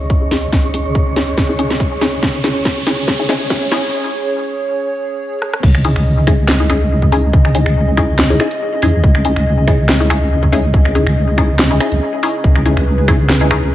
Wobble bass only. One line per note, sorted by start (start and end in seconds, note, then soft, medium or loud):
0.00 0.30 C#2 medium
0.31 0.51 C#2 medium
0.52 0.84 C#2 loud
0.85 1.58 C#2 loud
1.59 2.21 C#2 medium
2.23 2.54 C#2 loud
2.55 3.28 C#2 loud
3.29 3.70 C#2 medium
3.72 3.91 C#2 medium
5.63 5.95 C#2 loud
5.96 6.68 C#2 loud
6.70 7.11 C#2 medium
7.12 7.32 C#2 medium
7.33 7.65 C#2 loud
7.66 8.39 C#2 loud
8.83 9.02 E2 loud
9.04 9.35 C#2 loud
9.36 10.09 C#2 loud
10.10 10.51 C#2 medium
10.52 10.72 C#2 medium
10.74 11.05 C#2 loud
11.06 11.79 C#2 loud
11.92 12.01 C#2 medium
12.44 12.75 C#2 loud
12.77 13.49 C#2 loud
13.51 13.75 C#2 medium